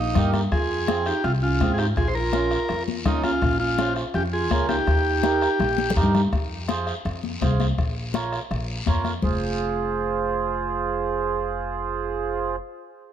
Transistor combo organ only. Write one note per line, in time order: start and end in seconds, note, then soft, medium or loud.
0.00 0.31 D#4 medium
0.52 1.08 G#4 loud
1.07 1.25 G4 medium
1.24 1.32 F4 loud
1.43 1.72 F4 medium
1.74 1.78 G#4 medium
1.79 1.87 G4 medium
1.97 2.08 G#4 loud
2.08 2.15 C5 medium
2.15 2.83 A#4 loud
3.06 3.23 D#4 loud
3.24 3.58 F4 loud
3.60 3.94 F4 loud
4.15 4.23 G4 loud
4.33 4.67 G#4 loud
4.69 5.92 G4 medium